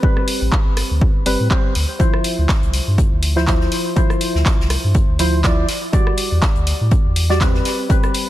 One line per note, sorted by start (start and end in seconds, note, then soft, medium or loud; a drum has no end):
0.03 1.23 G3 medium
0.03 1.24 C4 medium
0.03 1.24 B4 loud
0.03 kick loud
0.17 cross-stick medium
0.28 open hi-hat loud
0.41 0.49 A1 loud
0.52 kick loud
0.52 clap loud
0.66 0.83 G1 medium
0.77 cross-stick medium
0.77 open hi-hat loud
0.91 1.07 D2 medium
1.01 kick loud
1.26 1.36 G1 loud
1.26 1.48 G3 medium
1.26 1.48 C4 medium
1.26 1.48 B4 loud
1.26 open hi-hat loud
1.40 1.48 A2 medium
1.50 1.74 G3 medium
1.50 1.74 C4 medium
1.50 1.74 C5 loud
1.50 kick loud
1.50 clap loud
1.75 1.85 D2 medium
1.75 open hi-hat loud
1.99 3.33 F3 medium
1.99 3.33 E4 medium
1.99 3.34 C5 medium
1.99 kick loud
1.99 closed hi-hat medium
2.14 cross-stick medium
2.24 closed hi-hat medium
2.24 open hi-hat loud
2.38 2.46 D2 loud
2.49 kick loud
2.49 snare loud
2.49 clap loud
2.49 closed hi-hat medium
2.63 2.80 C2 medium
2.63 closed hi-hat soft
2.74 closed hi-hat medium
2.74 open hi-hat loud
2.87 3.04 G2 medium
2.98 kick loud
2.98 closed hi-hat loud
3.12 3.67 D2 medium
3.23 closed hi-hat medium
3.23 open hi-hat loud
3.36 3.45 F3 medium
3.36 3.45 E4 medium
3.36 3.45 C5 medium
3.36 snare medium
3.47 3.94 F3 medium
3.47 3.94 E4 medium
3.47 3.94 C5 medium
3.47 kick loud
3.47 snare loud
3.47 clap loud
3.47 closed hi-hat medium
3.61 snare soft
3.72 open hi-hat loud
3.96 5.17 F3 medium
3.96 5.17 E4 medium
3.96 5.17 C5 loud
3.96 kick loud
3.96 closed hi-hat medium
4.10 cross-stick medium
4.10 closed hi-hat soft
4.21 closed hi-hat medium
4.21 open hi-hat medium
4.35 4.43 D2 loud
4.35 snare soft
4.46 kick loud
4.46 snare loud
4.46 clap loud
4.46 closed hi-hat medium
4.60 4.76 C2 medium
4.60 snare medium
4.70 cross-stick medium
4.70 closed hi-hat medium
4.70 open hi-hat loud
4.84 5.01 G2 medium
4.94 kick loud
4.94 closed hi-hat medium
5.09 5.64 D2 medium
5.19 5.41 F3 medium
5.19 5.42 E4 medium
5.19 5.42 C5 medium
5.19 closed hi-hat medium
5.19 open hi-hat loud
5.44 5.67 F3 medium
5.44 5.67 E4 medium
5.44 5.67 D5 loud
5.44 kick loud
5.44 snare loud
5.44 clap loud
5.44 closed hi-hat medium
5.69 snare medium
5.69 closed hi-hat medium
5.69 open hi-hat loud
5.92 7.26 G3 medium
5.92 7.27 F#4 medium
5.92 7.27 D5 medium
5.92 kick loud
5.92 closed hi-hat medium
6.07 cross-stick medium
6.17 closed hi-hat medium
6.17 open hi-hat medium
6.32 6.39 E2 medium
6.42 kick loud
6.42 snare loud
6.42 clap loud
6.42 closed hi-hat medium
6.56 6.73 D2 medium
6.56 closed hi-hat soft
6.67 closed hi-hat medium
6.67 open hi-hat loud
6.81 6.98 A2 medium
6.91 kick loud
6.91 closed hi-hat medium
7.05 7.61 E2 medium
7.16 closed hi-hat medium
7.16 open hi-hat loud
7.30 7.38 G3 medium
7.30 7.38 F#4 medium
7.30 7.38 D5 loud
7.30 snare medium
7.41 7.87 G3 medium
7.41 7.87 C4 medium
7.41 7.88 B4 medium
7.41 kick loud
7.41 snare loud
7.41 clap loud
7.41 closed hi-hat medium
7.54 snare soft
7.65 snare medium
7.65 closed hi-hat medium
7.65 open hi-hat loud
7.89 8.29 G3 medium
7.89 8.29 C4 medium
7.89 8.29 B4 loud
7.89 kick loud
7.89 closed hi-hat medium
8.03 cross-stick medium
8.03 closed hi-hat soft
8.14 closed hi-hat medium
8.14 open hi-hat medium